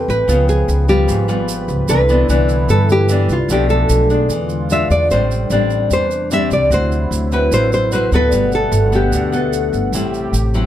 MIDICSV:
0, 0, Header, 1, 6, 480
1, 0, Start_track
1, 0, Key_signature, 1, "major"
1, 0, Tempo, 401875
1, 334, Time_signature, 4, 2, 24, 8
1, 12732, End_track
2, 0, Start_track
2, 0, Title_t, "Nylon-string guitar"
2, 0, Program_c, 0, 24
2, 116, Note_on_c, 0, 71, 81
2, 552, Note_off_c, 0, 71, 0
2, 584, Note_on_c, 0, 68, 81
2, 1026, Note_off_c, 0, 68, 0
2, 1065, Note_on_c, 0, 67, 79
2, 1972, Note_off_c, 0, 67, 0
2, 2261, Note_on_c, 0, 71, 80
2, 3222, Note_off_c, 0, 71, 0
2, 3226, Note_on_c, 0, 69, 72
2, 3468, Note_off_c, 0, 69, 0
2, 3487, Note_on_c, 0, 67, 83
2, 3965, Note_off_c, 0, 67, 0
2, 3970, Note_on_c, 0, 65, 76
2, 4200, Note_off_c, 0, 65, 0
2, 4207, Note_on_c, 0, 67, 81
2, 4415, Note_off_c, 0, 67, 0
2, 4420, Note_on_c, 0, 69, 73
2, 5160, Note_off_c, 0, 69, 0
2, 5641, Note_on_c, 0, 76, 77
2, 5864, Note_off_c, 0, 76, 0
2, 5869, Note_on_c, 0, 74, 79
2, 6103, Note_off_c, 0, 74, 0
2, 6107, Note_on_c, 0, 72, 81
2, 7072, Note_off_c, 0, 72, 0
2, 7086, Note_on_c, 0, 72, 79
2, 7559, Note_off_c, 0, 72, 0
2, 7563, Note_on_c, 0, 76, 80
2, 7797, Note_off_c, 0, 76, 0
2, 7801, Note_on_c, 0, 74, 78
2, 8036, Note_off_c, 0, 74, 0
2, 8048, Note_on_c, 0, 72, 91
2, 8945, Note_off_c, 0, 72, 0
2, 9002, Note_on_c, 0, 72, 87
2, 9228, Note_off_c, 0, 72, 0
2, 9243, Note_on_c, 0, 72, 78
2, 9477, Note_off_c, 0, 72, 0
2, 9492, Note_on_c, 0, 72, 71
2, 9721, Note_off_c, 0, 72, 0
2, 9739, Note_on_c, 0, 71, 85
2, 10205, Note_off_c, 0, 71, 0
2, 10210, Note_on_c, 0, 69, 79
2, 10687, Note_off_c, 0, 69, 0
2, 10694, Note_on_c, 0, 67, 74
2, 12732, Note_off_c, 0, 67, 0
2, 12732, End_track
3, 0, Start_track
3, 0, Title_t, "Nylon-string guitar"
3, 0, Program_c, 1, 24
3, 0, Note_on_c, 1, 52, 55
3, 0, Note_on_c, 1, 60, 50
3, 0, Note_on_c, 1, 67, 61
3, 0, Note_on_c, 1, 71, 56
3, 297, Note_off_c, 1, 60, 0
3, 301, Note_off_c, 1, 67, 0
3, 302, Note_off_c, 1, 71, 0
3, 320, Note_off_c, 1, 52, 0
3, 330, Note_on_c, 1, 49, 52
3, 341, Note_on_c, 1, 59, 46
3, 344, Note_on_c, 1, 65, 52
3, 1020, Note_off_c, 1, 59, 0
3, 1021, Note_off_c, 1, 65, 0
3, 1057, Note_on_c, 1, 55, 56
3, 1063, Note_on_c, 1, 59, 51
3, 1069, Note_on_c, 1, 65, 61
3, 1269, Note_off_c, 1, 49, 0
3, 1291, Note_on_c, 1, 44, 56
3, 1499, Note_off_c, 1, 55, 0
3, 1499, Note_off_c, 1, 59, 0
3, 1504, Note_off_c, 1, 65, 0
3, 1531, Note_on_c, 1, 55, 51
3, 1537, Note_on_c, 1, 59, 53
3, 1541, Note_on_c, 1, 65, 65
3, 2215, Note_off_c, 1, 55, 0
3, 2217, Note_off_c, 1, 59, 0
3, 2220, Note_off_c, 1, 65, 0
3, 2229, Note_off_c, 1, 44, 0
3, 2258, Note_on_c, 1, 48, 45
3, 2263, Note_on_c, 1, 52, 51
3, 2263, Note_on_c, 1, 59, 49
3, 2268, Note_on_c, 1, 62, 53
3, 2398, Note_off_c, 1, 59, 0
3, 2400, Note_off_c, 1, 52, 0
3, 2403, Note_off_c, 1, 62, 0
3, 2497, Note_on_c, 1, 52, 58
3, 2505, Note_on_c, 1, 59, 58
3, 2513, Note_on_c, 1, 62, 60
3, 2698, Note_off_c, 1, 52, 0
3, 2702, Note_off_c, 1, 59, 0
3, 2705, Note_off_c, 1, 62, 0
3, 2742, Note_on_c, 1, 52, 53
3, 2743, Note_on_c, 1, 59, 55
3, 2748, Note_on_c, 1, 62, 57
3, 3194, Note_off_c, 1, 48, 0
3, 3211, Note_on_c, 1, 43, 51
3, 3661, Note_off_c, 1, 52, 0
3, 3661, Note_off_c, 1, 59, 0
3, 3664, Note_off_c, 1, 62, 0
3, 3696, Note_on_c, 1, 52, 54
3, 3702, Note_on_c, 1, 59, 53
3, 3711, Note_on_c, 1, 62, 53
3, 4005, Note_off_c, 1, 52, 0
3, 4008, Note_off_c, 1, 59, 0
3, 4013, Note_off_c, 1, 62, 0
3, 4149, Note_off_c, 1, 43, 0
3, 4179, Note_on_c, 1, 47, 50
3, 4183, Note_on_c, 1, 53, 47
3, 4184, Note_on_c, 1, 57, 45
3, 4193, Note_on_c, 1, 62, 54
3, 4861, Note_off_c, 1, 53, 0
3, 4862, Note_off_c, 1, 57, 0
3, 4866, Note_off_c, 1, 62, 0
3, 4899, Note_on_c, 1, 56, 56
3, 4905, Note_on_c, 1, 62, 51
3, 5114, Note_off_c, 1, 47, 0
3, 5147, Note_on_c, 1, 52, 50
3, 5579, Note_off_c, 1, 56, 0
3, 5583, Note_off_c, 1, 62, 0
3, 5627, Note_on_c, 1, 56, 48
3, 5628, Note_on_c, 1, 62, 50
3, 5634, Note_on_c, 1, 65, 61
3, 6078, Note_off_c, 1, 52, 0
3, 6083, Note_off_c, 1, 56, 0
3, 6083, Note_off_c, 1, 62, 0
3, 6086, Note_off_c, 1, 65, 0
3, 6116, Note_on_c, 1, 45, 50
3, 6117, Note_on_c, 1, 55, 47
3, 6126, Note_on_c, 1, 60, 47
3, 6128, Note_on_c, 1, 62, 52
3, 6548, Note_off_c, 1, 55, 0
3, 6552, Note_off_c, 1, 62, 0
3, 6554, Note_off_c, 1, 60, 0
3, 6586, Note_on_c, 1, 55, 53
3, 6591, Note_on_c, 1, 60, 52
3, 6596, Note_on_c, 1, 62, 62
3, 7043, Note_off_c, 1, 45, 0
3, 7066, Note_on_c, 1, 52, 47
3, 7227, Note_off_c, 1, 55, 0
3, 7229, Note_off_c, 1, 60, 0
3, 7232, Note_off_c, 1, 62, 0
3, 7543, Note_on_c, 1, 55, 51
3, 7549, Note_on_c, 1, 60, 55
3, 7554, Note_on_c, 1, 62, 62
3, 7982, Note_off_c, 1, 55, 0
3, 7984, Note_off_c, 1, 60, 0
3, 7987, Note_off_c, 1, 62, 0
3, 7998, Note_off_c, 1, 52, 0
3, 8014, Note_on_c, 1, 60, 52
3, 8022, Note_on_c, 1, 50, 46
3, 8025, Note_on_c, 1, 66, 50
3, 8697, Note_off_c, 1, 60, 0
3, 8702, Note_off_c, 1, 66, 0
3, 8744, Note_on_c, 1, 60, 62
3, 8753, Note_on_c, 1, 66, 58
3, 8759, Note_on_c, 1, 71, 65
3, 8956, Note_off_c, 1, 50, 0
3, 8986, Note_on_c, 1, 45, 50
3, 9422, Note_off_c, 1, 60, 0
3, 9427, Note_off_c, 1, 66, 0
3, 9430, Note_off_c, 1, 71, 0
3, 9462, Note_on_c, 1, 60, 53
3, 9468, Note_on_c, 1, 66, 54
3, 9470, Note_on_c, 1, 71, 54
3, 9661, Note_off_c, 1, 60, 0
3, 9664, Note_off_c, 1, 71, 0
3, 9665, Note_off_c, 1, 66, 0
3, 9713, Note_on_c, 1, 59, 54
3, 9719, Note_on_c, 1, 66, 57
3, 9724, Note_on_c, 1, 69, 62
3, 9918, Note_off_c, 1, 45, 0
3, 9948, Note_on_c, 1, 55, 51
3, 10387, Note_off_c, 1, 59, 0
3, 10390, Note_off_c, 1, 69, 0
3, 10391, Note_off_c, 1, 66, 0
3, 10656, Note_on_c, 1, 59, 56
3, 10666, Note_on_c, 1, 69, 60
3, 10879, Note_off_c, 1, 55, 0
3, 10907, Note_on_c, 1, 50, 53
3, 11098, Note_off_c, 1, 59, 0
3, 11103, Note_off_c, 1, 69, 0
3, 11136, Note_on_c, 1, 59, 57
3, 11149, Note_on_c, 1, 69, 64
3, 11818, Note_off_c, 1, 59, 0
3, 11825, Note_off_c, 1, 69, 0
3, 11838, Note_off_c, 1, 50, 0
3, 11874, Note_on_c, 1, 55, 49
3, 11875, Note_on_c, 1, 45, 50
3, 11877, Note_on_c, 1, 60, 46
3, 11882, Note_on_c, 1, 64, 54
3, 12342, Note_off_c, 1, 55, 0
3, 12345, Note_off_c, 1, 60, 0
3, 12346, Note_off_c, 1, 64, 0
3, 12593, Note_on_c, 1, 54, 54
3, 12601, Note_on_c, 1, 60, 55
3, 12605, Note_on_c, 1, 64, 63
3, 12732, Note_off_c, 1, 45, 0
3, 12732, Note_off_c, 1, 54, 0
3, 12732, Note_off_c, 1, 60, 0
3, 12732, Note_off_c, 1, 64, 0
3, 12732, End_track
4, 0, Start_track
4, 0, Title_t, "Analog synth pad"
4, 0, Program_c, 2, 89
4, 0, Note_on_c, 2, 48, 70
4, 0, Note_on_c, 2, 71, 68
4, 0, Note_on_c, 2, 79, 86
4, 317, Note_off_c, 2, 48, 0
4, 334, Note_on_c, 2, 53, 79
4, 2221, Note_off_c, 2, 79, 0
4, 2236, Note_off_c, 2, 53, 0
4, 2248, Note_on_c, 2, 64, 85
4, 2258, Note_on_c, 2, 50, 79
4, 4135, Note_off_c, 2, 71, 0
4, 4153, Note_off_c, 2, 64, 0
4, 4158, Note_off_c, 2, 50, 0
4, 4178, Note_on_c, 2, 57, 62
4, 4180, Note_on_c, 2, 62, 85
4, 4182, Note_on_c, 2, 47, 71
4, 5128, Note_off_c, 2, 57, 0
4, 5129, Note_off_c, 2, 62, 0
4, 5130, Note_off_c, 2, 47, 0
4, 5138, Note_on_c, 2, 56, 63
4, 5141, Note_on_c, 2, 65, 79
4, 5143, Note_on_c, 2, 50, 78
4, 6088, Note_off_c, 2, 56, 0
4, 6089, Note_off_c, 2, 65, 0
4, 6090, Note_off_c, 2, 50, 0
4, 6098, Note_on_c, 2, 48, 75
4, 6098, Note_on_c, 2, 55, 67
4, 6099, Note_on_c, 2, 62, 85
4, 7998, Note_off_c, 2, 55, 0
4, 7999, Note_off_c, 2, 62, 0
4, 8023, Note_on_c, 2, 54, 75
4, 8023, Note_on_c, 2, 64, 87
4, 9900, Note_off_c, 2, 48, 0
4, 9921, Note_off_c, 2, 54, 0
4, 9921, Note_off_c, 2, 64, 0
4, 9945, Note_on_c, 2, 47, 84
4, 9949, Note_on_c, 2, 78, 88
4, 9951, Note_on_c, 2, 57, 70
4, 11842, Note_off_c, 2, 47, 0
4, 11844, Note_off_c, 2, 78, 0
4, 11854, Note_on_c, 2, 67, 80
4, 11864, Note_on_c, 2, 48, 73
4, 12732, Note_off_c, 2, 48, 0
4, 12732, Note_off_c, 2, 57, 0
4, 12732, Note_off_c, 2, 67, 0
4, 12732, End_track
5, 0, Start_track
5, 0, Title_t, "Upright bass"
5, 0, Program_c, 3, 32
5, 98, Note_on_c, 3, 33, 80
5, 320, Note_off_c, 3, 33, 0
5, 334, Note_on_c, 3, 37, 83
5, 781, Note_off_c, 3, 37, 0
5, 816, Note_on_c, 3, 37, 89
5, 1262, Note_off_c, 3, 37, 0
5, 1292, Note_on_c, 3, 32, 73
5, 1966, Note_off_c, 3, 32, 0
5, 2008, Note_on_c, 3, 37, 82
5, 2235, Note_off_c, 3, 37, 0
5, 2248, Note_on_c, 3, 36, 84
5, 2698, Note_off_c, 3, 36, 0
5, 2733, Note_on_c, 3, 36, 79
5, 3181, Note_off_c, 3, 36, 0
5, 3216, Note_on_c, 3, 43, 78
5, 3888, Note_off_c, 3, 43, 0
5, 3928, Note_on_c, 3, 36, 72
5, 4155, Note_off_c, 3, 36, 0
5, 4162, Note_on_c, 3, 35, 81
5, 4615, Note_off_c, 3, 35, 0
5, 4651, Note_on_c, 3, 35, 84
5, 5100, Note_off_c, 3, 35, 0
5, 5123, Note_on_c, 3, 40, 77
5, 5802, Note_off_c, 3, 40, 0
5, 5853, Note_on_c, 3, 40, 72
5, 6078, Note_off_c, 3, 40, 0
5, 6103, Note_on_c, 3, 33, 83
5, 6547, Note_off_c, 3, 33, 0
5, 6572, Note_on_c, 3, 33, 86
5, 7021, Note_off_c, 3, 33, 0
5, 7054, Note_on_c, 3, 40, 71
5, 7728, Note_off_c, 3, 40, 0
5, 7766, Note_on_c, 3, 36, 76
5, 7994, Note_off_c, 3, 36, 0
5, 8007, Note_on_c, 3, 38, 84
5, 8458, Note_off_c, 3, 38, 0
5, 8489, Note_on_c, 3, 38, 86
5, 8939, Note_off_c, 3, 38, 0
5, 8972, Note_on_c, 3, 33, 76
5, 9647, Note_off_c, 3, 33, 0
5, 9695, Note_on_c, 3, 38, 78
5, 9920, Note_off_c, 3, 38, 0
5, 9933, Note_on_c, 3, 31, 80
5, 10381, Note_off_c, 3, 31, 0
5, 10411, Note_on_c, 3, 31, 92
5, 10860, Note_off_c, 3, 31, 0
5, 10889, Note_on_c, 3, 38, 82
5, 11566, Note_off_c, 3, 38, 0
5, 11616, Note_on_c, 3, 31, 72
5, 11840, Note_off_c, 3, 31, 0
5, 11854, Note_on_c, 3, 33, 79
5, 12302, Note_off_c, 3, 33, 0
5, 12335, Note_on_c, 3, 33, 83
5, 12732, Note_off_c, 3, 33, 0
5, 12732, End_track
6, 0, Start_track
6, 0, Title_t, "Drums"
6, 117, Note_on_c, 9, 82, 23
6, 236, Note_off_c, 9, 82, 0
6, 345, Note_on_c, 9, 82, 55
6, 464, Note_off_c, 9, 82, 0
6, 583, Note_on_c, 9, 82, 24
6, 702, Note_off_c, 9, 82, 0
6, 821, Note_on_c, 9, 82, 53
6, 941, Note_off_c, 9, 82, 0
6, 1056, Note_on_c, 9, 82, 21
6, 1176, Note_off_c, 9, 82, 0
6, 1297, Note_on_c, 9, 82, 56
6, 1416, Note_off_c, 9, 82, 0
6, 1537, Note_on_c, 9, 82, 23
6, 1656, Note_off_c, 9, 82, 0
6, 1775, Note_on_c, 9, 82, 57
6, 1894, Note_off_c, 9, 82, 0
6, 2012, Note_on_c, 9, 82, 24
6, 2132, Note_off_c, 9, 82, 0
6, 2249, Note_on_c, 9, 82, 58
6, 2368, Note_off_c, 9, 82, 0
6, 2494, Note_on_c, 9, 82, 22
6, 2613, Note_off_c, 9, 82, 0
6, 2738, Note_on_c, 9, 82, 50
6, 2858, Note_off_c, 9, 82, 0
6, 2972, Note_on_c, 9, 82, 23
6, 3092, Note_off_c, 9, 82, 0
6, 3214, Note_on_c, 9, 82, 60
6, 3333, Note_off_c, 9, 82, 0
6, 3456, Note_on_c, 9, 82, 27
6, 3575, Note_off_c, 9, 82, 0
6, 3687, Note_on_c, 9, 82, 60
6, 3806, Note_off_c, 9, 82, 0
6, 3930, Note_on_c, 9, 82, 25
6, 4050, Note_off_c, 9, 82, 0
6, 4171, Note_on_c, 9, 82, 50
6, 4291, Note_off_c, 9, 82, 0
6, 4413, Note_on_c, 9, 82, 20
6, 4532, Note_off_c, 9, 82, 0
6, 4651, Note_on_c, 9, 82, 60
6, 4770, Note_off_c, 9, 82, 0
6, 4895, Note_on_c, 9, 82, 20
6, 5015, Note_off_c, 9, 82, 0
6, 5133, Note_on_c, 9, 82, 58
6, 5252, Note_off_c, 9, 82, 0
6, 5368, Note_on_c, 9, 82, 23
6, 5487, Note_off_c, 9, 82, 0
6, 5612, Note_on_c, 9, 82, 52
6, 5731, Note_off_c, 9, 82, 0
6, 5861, Note_on_c, 9, 82, 23
6, 5981, Note_off_c, 9, 82, 0
6, 6100, Note_on_c, 9, 82, 51
6, 6219, Note_off_c, 9, 82, 0
6, 6344, Note_on_c, 9, 82, 23
6, 6463, Note_off_c, 9, 82, 0
6, 6573, Note_on_c, 9, 82, 55
6, 6692, Note_off_c, 9, 82, 0
6, 6811, Note_on_c, 9, 82, 21
6, 6931, Note_off_c, 9, 82, 0
6, 7055, Note_on_c, 9, 82, 59
6, 7175, Note_off_c, 9, 82, 0
6, 7295, Note_on_c, 9, 82, 27
6, 7414, Note_off_c, 9, 82, 0
6, 7536, Note_on_c, 9, 82, 56
6, 7656, Note_off_c, 9, 82, 0
6, 7774, Note_on_c, 9, 82, 26
6, 7894, Note_off_c, 9, 82, 0
6, 8023, Note_on_c, 9, 82, 54
6, 8143, Note_off_c, 9, 82, 0
6, 8264, Note_on_c, 9, 82, 21
6, 8383, Note_off_c, 9, 82, 0
6, 8506, Note_on_c, 9, 82, 60
6, 8625, Note_off_c, 9, 82, 0
6, 8738, Note_on_c, 9, 82, 19
6, 8857, Note_off_c, 9, 82, 0
6, 8981, Note_on_c, 9, 82, 61
6, 9101, Note_off_c, 9, 82, 0
6, 9226, Note_on_c, 9, 82, 25
6, 9345, Note_off_c, 9, 82, 0
6, 9458, Note_on_c, 9, 82, 55
6, 9577, Note_off_c, 9, 82, 0
6, 9701, Note_on_c, 9, 82, 25
6, 9820, Note_off_c, 9, 82, 0
6, 9936, Note_on_c, 9, 82, 55
6, 10055, Note_off_c, 9, 82, 0
6, 10176, Note_on_c, 9, 82, 22
6, 10296, Note_off_c, 9, 82, 0
6, 10420, Note_on_c, 9, 82, 55
6, 10540, Note_off_c, 9, 82, 0
6, 10662, Note_on_c, 9, 82, 21
6, 10781, Note_off_c, 9, 82, 0
6, 10900, Note_on_c, 9, 82, 62
6, 11020, Note_off_c, 9, 82, 0
6, 11146, Note_on_c, 9, 82, 25
6, 11266, Note_off_c, 9, 82, 0
6, 11383, Note_on_c, 9, 82, 53
6, 11502, Note_off_c, 9, 82, 0
6, 11627, Note_on_c, 9, 82, 22
6, 11746, Note_off_c, 9, 82, 0
6, 11864, Note_on_c, 9, 82, 57
6, 11984, Note_off_c, 9, 82, 0
6, 12111, Note_on_c, 9, 82, 23
6, 12231, Note_off_c, 9, 82, 0
6, 12350, Note_on_c, 9, 82, 58
6, 12469, Note_off_c, 9, 82, 0
6, 12589, Note_on_c, 9, 82, 20
6, 12709, Note_off_c, 9, 82, 0
6, 12732, End_track
0, 0, End_of_file